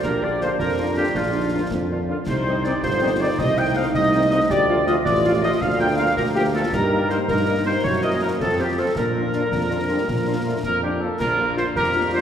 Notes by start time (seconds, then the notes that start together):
0.02 A#1 F3 D4 G4 A#4, concert bass drum, snare
0.22 D3 A#3 D4 F4 D5
0.40 D3 A#3 D4 F4 C5, snare
0.58 F2 F4 A#4, concert bass drum, snare
0.78 D3 A#3 D4 F4
0.97 D3 A#3 D4 F4 G4
1.15 A#1 D4 F4, concert bass drum, snare
1.34 D3 A#3 D4 D#4 F4
1.53 D3 A#3 D4 F4
1.71 F2 D4, concert bass drum, snare
1.90 D3 A#3 D4 F4
2.08 D3 A#3 D4 F4
2.27 C2 G3 D#4 C5, concert bass drum, snare, crash
2.46 D#3 G3 C4 D#4
2.64 D#3 G3 C4 D#4 D5, snare
2.83 G1 F4 C5, concert bass drum, snare
3.01 D#3 G3 C4 D#4
3.21 D#3 G3 C4 D#4 D5
3.38 C2 A3 D#4 D#5, concert bass drum, snare
3.57 D#3 A3 C4 D#4 G5
3.75 D#3 A3 C4 D#4 F5
3.94 C2 D#5, concert bass drum, snare
4.14 D#3 A3 C4 D#4
4.31 D#3 A3 C4 D#4 D#5
4.49 D2 F4 G4 D5, concert bass drum, snare
4.69 F3 A3 F4
4.86 F3 A3 F4 D#5, snare
5.05 A1 F4 D5, concert bass drum, snare
5.24 F3 A3 F4
5.42 F3 A3 F4 D#5
5.60 D2 A#3 D4 F5, concert bass drum, snare
5.79 F3 A#3 F4 A#4 G5
5.96 F3 A#3 F4 A#4 F5
6.15 D2 F4 A#4, concert bass drum, snare
6.34 F3 A#3 F4 G4 A#4
6.54 F3 A#3 F4 A4 A#4
6.72 G2 A#3 D#4 G4 A#4, concert bass drum, snare, crash
6.92 G3 A#3 D#4 A#4
7.09 G3 A#3 D#4 A#4 C5, snare
7.28 G2 A#3 D#4 A#4, concert bass drum, snare
7.48 G3 A#3 D#4 A#4
7.65 G3 A#3 D#4 A#4 C5
7.83 F#2 F#3 A#3 E4 C#5, concert bass drum, snare
8.03 E3 A#3 E4 A#4 D#5
8.11 C#4
8.21 E3 A#3 E4 A#4
8.39 F2 F3 C4 A4, concert bass drum, snare
8.58 F3 C4 F4 G4
8.77 F3 C4 F4 A4
8.95 A#2 F3 D4 A#4, concert bass drum, snare
9.15 F3 A#3 D4 F4
9.33 F3 A#3 D4 F4, snare
9.51 F2 F3, concert bass drum, snare
9.70 F3 A#3 D4 F4
9.89 F3 G3 A#3 D4 F4
10.08 A#2 F3, concert bass drum, snare
10.27 F3 A#3 D4 F4
10.45 F3 A3 A#3 D4 F4
10.63 F2 A#3 A#4, concert bass drum, snare
10.83 F3 A#3 D4 F4 G4
11.00 F3 A#3 D4 F4 A4
11.19 A#1 F3 D4 F4 A#4, concert bass drum, snare, crash
11.38 A#3 D4 F4
11.56 A#3 D4 F4 C5, snare
11.76 F2 G4 A#4, concert bass drum, snare
11.94 A#3 D4 F4
12.13 A#3 D4 F4 C5